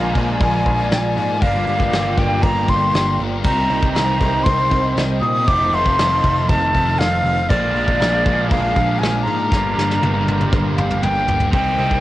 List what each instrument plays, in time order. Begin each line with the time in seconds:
Already playing: picked electric bass A#1, distorted electric guitar A#2 F3 A#3, overdriven electric guitar A#2 F3 G#3 D4, analog synth pad F4 A#4 D5 G#5, flute F5
0.15 picked electric bass A#1, distorted electric guitar F3 A#3, kick, open hi-hat
0.40 picked electric bass A#1, distorted electric guitar A#2 F3 A#3, flute G#5, kick, open hi-hat
0.65 picked electric bass A#1, distorted electric guitar F3 A#3, kick, open hi-hat
0.91 picked electric bass A#1, distorted electric guitar A#2 F3 A#3, flute G#5, snare, open hi-hat
1.16 picked electric bass G#2, distorted electric guitar F3 A#3, open hi-hat
1.41 picked electric bass G1, distorted electric guitar G2 D3 G3, overdriven electric guitar A#3 D4, flute F5, analog synth pad G5, kick, open hi-hat
1.67 picked electric bass G1, distorted electric guitar D3 G3, open hi-hat
1.80 kick
1.92 picked electric bass G1, distorted electric guitar G2 D3 G3, snare, open hi-hat
2.17 picked electric bass G1, distorted electric guitar D3 G3, flute G5, kick, open hi-hat
2.43 picked electric bass G1, distorted electric guitar G2 D3 G3, flute A#5, kick, open hi-hat
2.69 distorted electric guitar D3 G3, flute C6, kick, open hi-hat
2.94 picked electric bass G1, distorted electric guitar G2 D3 G3, snare, open hi-hat
3.19 picked electric bass G1, distorted electric guitar D3 G3, open hi-hat
3.44 picked electric bass C2, distorted electric guitar C3 G3 C4, analog synth pad D#4 C5 G5, overdriven electric guitar D#4, flute A#5, kick, crash
3.70 picked electric bass C2, distorted electric guitar G3 C4, open hi-hat
3.82 kick
3.93 picked electric bass C2, distorted electric guitar C3 G3, flute A#5, snare, open hi-hat
3.97 distorted electric guitar C4
4.20 picked electric bass C2, distorted electric guitar G3 C4, kick, open hi-hat
4.44 picked electric bass C2, distorted electric guitar C3 G3, flute C6, kick, open hi-hat
4.48 distorted electric guitar C4
4.71 picked electric bass C2, distorted electric guitar G3 C4, kick, open hi-hat
4.96 picked electric bass C2, distorted electric guitar C3 G3 C4, snare, open hi-hat
5.21 picked electric bass A#2, distorted electric guitar G3 C4, flute D#6, open hi-hat
5.46 picked electric bass F1, distorted electric guitar F2 C3 F3, overdriven electric guitar D#3, analog synth pad A4 F5, flute D6, kick, open hi-hat
5.51 overdriven electric guitar A3 D#4
5.71 picked electric bass F1, distorted electric guitar C3 F3, flute C6, open hi-hat
5.86 kick
5.97 picked electric bass F1, distorted electric guitar F2 C3 F3, snare, open hi-hat
6.23 picked electric bass F1, distorted electric guitar C3 F3, kick, open hi-hat
6.48 picked electric bass F1, distorted electric guitar F2 C3 F3, flute A5, kick, open hi-hat
6.73 distorted electric guitar C3 F3, kick, open hi-hat
6.99 picked electric bass F1, distorted electric guitar F2 C3 F3, flute F5, snare, open hi-hat
7.24 picked electric bass F1, distorted electric guitar C3 F3, open hi-hat
7.49 picked electric bass A#1, distorted electric guitar A#2 F3 A#3, overdriven electric guitar G#3 D4, analog synth pad D4 G#4 A#4, flute D5, kick, crash
7.74 picked electric bass A#1, distorted electric guitar F3 A#3, open hi-hat
7.88 kick
8.00 picked electric bass A#1, distorted electric guitar A#2 F3 A#3, snare, open hi-hat
8.26 picked electric bass A#1, distorted electric guitar F3 A#3, kick, open hi-hat
8.49 picked electric bass A#1, distorted electric guitar A#2 F3 A#3, flute F5, kick, open hi-hat
8.76 picked electric bass A#1, distorted electric guitar F3 A#3, kick, open hi-hat
8.99 picked electric bass A#1, distorted electric guitar A#2 F3 A#3, flute G#5, open hi-hat
9.04 snare
9.23 picked electric bass G#2, distorted electric guitar F3 A#3, flute A#5, open hi-hat
9.51 picked electric bass G1, distorted electric guitar G2 D3 G3, overdriven electric guitar A#3 D4, analog synth pad G4 A#4, kick, snare
9.77 picked electric bass G1, distorted electric guitar D3 G3, snare
9.91 snare
10.02 picked electric bass G1, distorted electric guitar G2 D3 G3, high tom
10.27 picked electric bass G1, distorted electric guitar D3 G3, high tom
10.41 mid tom
10.52 picked electric bass G1, distorted electric guitar G2 D3 G3, kick, mid tom
10.77 distorted electric guitar D3 G3, flute F5, mid tom
10.91 mid tom
11.03 picked electric bass G1, distorted electric guitar G2 D3 G3, flute G5, mid tom
11.28 picked electric bass G1, distorted electric guitar D3 G3, floor tom
11.40 floor tom
11.52 picked electric bass C2, distorted electric guitar C3 G3, analog synth pad D#4 A#4 C5 G5, overdriven electric guitar D#4, flute G5, kick, open hi-hat
11.57 distorted electric guitar C4
11.77 picked electric bass C2, distorted electric guitar C4, overdriven electric guitar D#4, open hi-hat
11.81 distorted electric guitar G3
11.91 kick